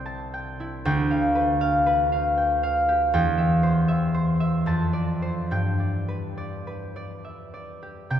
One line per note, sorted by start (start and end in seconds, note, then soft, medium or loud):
0.00 0.88 C2 loud
0.00 1.84 G4 medium
0.00 0.88 C5 medium
0.00 0.88 E5 medium
0.00 0.32 G5 medium
0.06 0.51 A5 medium
0.34 0.85 G5 medium
0.60 0.88 E4 medium
0.85 3.17 D2 loud
0.85 2.36 G5 loud
1.11 1.60 F5 medium
1.35 1.85 B4 medium
1.61 2.11 F5 medium
1.86 3.17 B4 medium
2.12 2.62 F5 medium
2.38 2.81 G5 medium
2.63 3.17 F5 medium
2.89 4.70 G4 medium
3.14 4.70 E2 loud
3.14 4.70 G5 loud
3.38 3.87 E5 medium
3.63 4.13 C5 medium
3.88 4.39 E5 medium
4.14 5.21 C5 medium
4.40 4.70 E5 medium
4.66 5.54 F2 medium
4.66 5.54 A5 medium
4.93 5.78 D5 medium
5.22 5.54 C5 medium
5.51 8.15 G2 medium
5.51 8.09 G5 medium
5.79 6.36 D5 medium
6.08 6.66 B4 medium
6.37 6.95 D5 medium
6.67 8.14 B4 medium
6.96 7.52 D5 medium
7.25 7.74 E5 soft
7.54 8.14 D5 medium
7.83 8.20 G4 medium
8.10 8.20 C3 medium
8.10 8.20 G5 loud